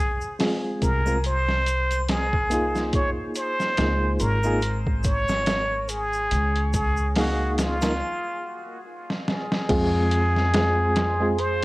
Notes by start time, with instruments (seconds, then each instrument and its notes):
Already playing: muted trumpet G#4
0.21 shaker
0.39 reed electric piano G#3 C4 F4 G#4, snare, open hi-hat, shaker
0.82 upright bass C2, muted trumpet A#4, kick, closed hi-hat, shaker
1.06 reed electric piano G#3 C4 F4 A#4, triangle, shaker
1.24 muted trumpet C5, closed hi-hat, shaker
1.49 snare
1.66 closed hi-hat, shaker
1.91 closed hi-hat, triangle, shaker
2.08 muted trumpet G#4, snare, closed hi-hat, shaker
2.33 kick
2.50 reed electric piano A#3 D#4 F4, closed hi-hat, shaker
2.54 reed electric piano G#4
2.75 snare, shaker
2.93 muted trumpet C#5, kick, closed hi-hat, shaker
3.35 muted trumpet C5, closed hi-hat, shaker
3.60 snare, shaker
3.77 upright bass C#2, reed electric piano A#3 D#4 F4 G#4, snare, closed hi-hat, shaker
4.20 upright bass G#1, muted trumpet A#4, closed hi-hat, shaker
4.43 reed electric piano A#3 D#4 F4 G#4, triangle, shaker
4.62 closed hi-hat, shaker
4.87 kick
5.04 muted trumpet C#5, kick, closed hi-hat, shaker
5.28 snare, triangle, shaker
5.46 snare, closed hi-hat, shaker
5.89 muted trumpet G#4, closed hi-hat, shaker
6.13 shaker
6.31 upright bass C#2, closed hi-hat, shaker
6.55 closed hi-hat
6.74 muted trumpet G#4, kick, closed hi-hat, shaker
6.97 shaker
7.16 reed electric piano A#3 D#4 G#4 F5, muted trumpet F#4, snare, open hi-hat, shaker
7.58 muted trumpet F4, snare, closed hi-hat, shaker
7.82 reed electric piano A#3 D#4 F4 A#4, snare, closed hi-hat, triangle, shaker
9.10 snare
9.28 muted trumpet G#4, snare
9.52 snare
9.68 upright bass F2, reed electric piano G#3 C4 F4 G#4, ambient pad G#4 F5 C6, kick, closed hi-hat, crash
10.11 closed hi-hat
10.36 snare
10.54 reed electric piano G#3 C4 F4 G#4, snare, closed hi-hat
10.96 snare, closed hi-hat
11.20 reed electric piano G#3 C4 F4 G#4
11.39 muted trumpet C5, closed hi-hat